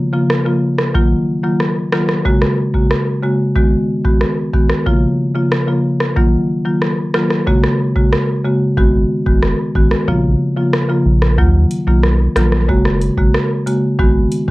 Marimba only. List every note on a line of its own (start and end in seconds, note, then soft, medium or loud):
0.13 0.25 C#3 medium
0.13 0.25 F3 medium
0.13 0.26 A#3 medium
0.13 0.26 F4 medium
0.46 0.58 C#3 medium
0.46 0.58 F3 medium
0.46 0.58 A#3 medium
0.46 0.58 F4 medium
0.95 1.40 D#3 medium
0.95 1.40 F#3 medium
0.95 1.40 A#3 medium
0.95 1.40 F4 loud
1.44 1.89 D#3 medium
1.44 1.89 F#3 medium
1.44 1.89 A#3 medium
1.44 1.89 F4 medium
1.92 2.23 D#3 medium
1.92 2.23 F#3 medium
1.92 2.23 A#3 medium
1.92 2.23 F4 medium
2.25 2.70 C#3 medium
2.25 2.70 G#3 medium
2.25 2.70 A#3 medium
2.25 2.70 F#4 loud
2.74 2.86 C#3 medium
2.74 2.86 G#3 medium
2.74 2.86 A#3 medium
2.74 2.87 F#4 medium
3.23 3.35 C#3 medium
3.23 3.35 G#3 medium
3.23 3.35 A#3 medium
3.23 3.35 F#4 medium
3.55 4.01 D#3 medium
3.55 4.01 G#3 medium
3.55 4.01 B3 medium
3.55 4.01 F#4 medium
4.04 4.50 D#3 medium
4.04 4.50 G#3 medium
4.04 4.50 B3 medium
4.04 4.50 F#4 medium
4.53 4.83 D#3 medium
4.53 4.84 G#3 medium
4.53 4.84 B3 medium
4.53 4.84 F#4 medium
4.86 5.31 C#3 medium
4.86 5.31 F3 medium
4.86 5.31 A#3 medium
4.86 5.31 F4 loud
5.35 5.47 C#3 medium
5.35 5.47 F3 medium
5.35 5.47 A#3 medium
5.35 5.47 F4 medium
5.67 5.80 C#3 medium
5.67 5.80 F3 medium
5.67 5.80 A#3 medium
5.67 5.80 F4 medium
6.16 6.61 D#3 medium
6.16 6.62 F#3 medium
6.16 6.62 A#3 medium
6.16 6.62 F4 loud
6.65 7.10 D#3 medium
6.65 7.10 F#3 medium
6.65 7.10 A#3 medium
6.65 7.11 F4 medium
7.14 7.44 D#3 medium
7.14 7.44 F#3 medium
7.14 7.44 A#3 medium
7.14 7.45 F4 medium
7.47 7.92 C#3 loud
7.47 7.92 G#3 medium
7.47 7.92 A#3 medium
7.47 7.92 F#4 loud
7.96 8.08 C#3 medium
7.96 8.08 G#3 medium
7.96 8.08 A#3 medium
7.96 8.08 F#4 medium
8.45 8.57 C#3 medium
8.45 8.57 G#3 medium
8.45 8.57 A#3 medium
8.45 8.57 F#4 medium
8.77 9.22 D#3 medium
8.77 9.22 G#3 medium
8.77 9.23 B3 medium
8.77 9.23 F#4 loud
9.26 9.71 D#3 medium
9.26 9.71 G#3 medium
9.26 9.71 B3 medium
9.26 9.72 F#4 medium
9.75 10.05 D#3 medium
9.75 10.05 G#3 medium
9.75 10.05 B3 medium
9.75 10.06 F#4 medium
10.08 10.53 C#3 medium
10.08 10.53 F3 medium
10.08 10.53 A#3 medium
10.08 10.53 F4 loud
10.57 10.69 C#3 medium
10.57 10.69 F3 medium
10.57 10.69 A#3 medium
10.57 10.69 F4 medium
10.89 11.01 C#3 medium
10.89 11.02 F3 medium
10.89 11.02 A#3 medium
10.89 11.02 F4 medium
11.38 11.83 D#3 medium
11.38 11.83 F#3 medium
11.38 11.83 A#3 medium
11.38 11.83 F4 loud
11.87 12.32 D#3 medium
11.87 12.32 F#3 medium
11.87 12.32 A#3 medium
11.87 12.32 F4 medium
12.36 12.66 D#3 medium
12.36 12.66 F#3 medium
12.36 12.66 A#3 medium
12.36 12.66 F4 medium
12.69 13.14 C#3 medium
12.69 13.14 G#3 medium
12.69 13.14 A#3 medium
12.69 13.14 F#4 loud
13.17 13.30 C#3 medium
13.17 13.30 G#3 medium
13.17 13.30 A#3 medium
13.17 13.30 F#4 medium
13.66 13.79 C#3 medium
13.66 13.79 G#3 medium
13.66 13.79 A#3 medium
13.66 13.79 F#4 medium
13.99 14.44 D#3 medium
13.99 14.44 G#3 medium
13.99 14.44 B3 medium
13.99 14.44 F#4 loud
14.48 14.51 D#3 medium